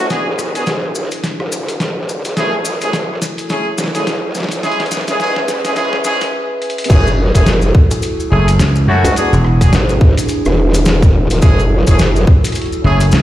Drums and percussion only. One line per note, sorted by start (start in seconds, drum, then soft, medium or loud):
0.10 snare medium
0.10 closed hi-hat medium
0.10 maracas soft
0.39 cross-stick soft
0.39 maracas medium
0.55 closed hi-hat medium
0.55 maracas medium
0.66 snare medium
0.66 closed hi-hat medium
0.66 maracas soft
0.95 maracas medium
1.11 closed hi-hat medium
1.11 maracas medium
1.24 snare medium
1.24 closed hi-hat medium
1.24 maracas soft
1.40 cross-stick medium
1.52 maracas loud
1.68 closed hi-hat medium
1.68 maracas soft
1.80 snare medium
1.80 closed hi-hat medium
1.80 maracas soft
2.09 maracas medium
2.25 closed hi-hat medium
2.25 maracas medium
2.37 snare medium
2.37 closed hi-hat medium
2.37 maracas soft
2.65 maracas loud
2.81 closed hi-hat medium
2.81 maracas medium
2.93 snare medium
2.93 closed hi-hat medium
2.93 maracas soft
3.22 snare medium
3.22 maracas loud
3.38 closed hi-hat medium
3.38 maracas medium
3.49 snare medium
3.49 closed hi-hat medium
3.49 maracas soft
3.78 snare medium
3.78 maracas loud
3.84 snare medium
3.88 snare medium
3.95 snare soft
3.95 closed hi-hat medium
3.95 maracas medium
3.97 snare soft
4.03 snare soft
4.03 maracas soft
4.07 snare medium
4.07 closed hi-hat medium
4.35 snare soft
4.35 maracas medium
4.38 snare soft
4.40 snare medium
4.43 snare medium
4.49 snare medium
4.49 closed hi-hat medium
4.49 maracas medium
4.63 snare medium
4.63 closed hi-hat soft
4.63 maracas soft
4.72 closed hi-hat soft
4.80 snare medium
4.80 closed hi-hat soft
4.86 closed hi-hat soft
4.91 snare medium
4.91 maracas medium
4.97 snare medium
5.01 snare medium
5.08 snare medium
5.08 closed hi-hat medium
5.08 maracas medium
5.20 snare loud
5.20 maracas soft
5.36 snare medium
5.48 snare loud
5.48 maracas loud
5.65 snare medium
5.65 closed hi-hat medium
5.65 maracas medium
5.76 snare loud
5.76 closed hi-hat medium
5.76 maracas soft
5.93 snare medium
6.04 snare loud
6.04 maracas loud
6.21 snare medium
6.21 closed hi-hat medium
6.21 maracas medium
6.62 closed hi-hat medium
6.70 closed hi-hat medium
6.78 closed hi-hat medium
6.84 closed hi-hat medium
6.90 kick loud
6.90 closed hi-hat medium
6.90 crash loud
6.90 maracas medium
7.07 maracas soft
7.35 kick medium
7.35 closed hi-hat medium
7.35 maracas medium
7.46 snare loud
7.46 closed hi-hat medium
7.46 maracas medium
7.62 maracas soft
7.75 kick loud
7.91 closed hi-hat medium
7.91 maracas medium
8.02 closed hi-hat medium
8.02 maracas medium
8.20 maracas soft
8.48 closed hi-hat medium
8.48 maracas medium
8.59 snare loud
8.59 closed hi-hat medium
8.59 maracas medium
8.76 maracas soft
9.05 closed hi-hat medium
9.05 maracas medium
9.16 closed hi-hat medium
9.16 maracas medium
9.33 maracas soft
9.45 cross-stick soft
9.61 kick medium
9.61 closed hi-hat medium
9.61 maracas medium
9.73 snare loud
9.73 closed hi-hat medium
9.73 maracas medium
9.89 maracas soft
10.01 kick loud
10.17 closed hi-hat medium
10.17 maracas medium
10.28 closed hi-hat medium
10.28 maracas medium
10.45 cross-stick medium
10.45 maracas soft
10.74 closed hi-hat medium
10.74 maracas medium
10.85 snare loud
10.85 closed hi-hat medium
10.85 maracas medium
11.02 kick loud
11.02 maracas soft
11.30 closed hi-hat medium
11.30 maracas medium
11.42 kick loud
11.42 closed hi-hat medium
11.42 maracas medium
11.59 maracas soft
11.87 kick medium
11.87 closed hi-hat medium
11.87 maracas medium
11.99 snare loud
11.99 closed hi-hat medium
11.99 maracas medium
12.16 maracas soft
12.27 kick loud
12.44 closed hi-hat medium
12.44 maracas medium
12.47 closed hi-hat medium
12.52 closed hi-hat soft
12.52 maracas medium
12.56 closed hi-hat medium
12.62 closed hi-hat soft
12.66 closed hi-hat soft
12.73 maracas soft
13.00 closed hi-hat medium
13.00 maracas medium
13.12 snare loud
13.12 closed hi-hat medium
13.12 maracas medium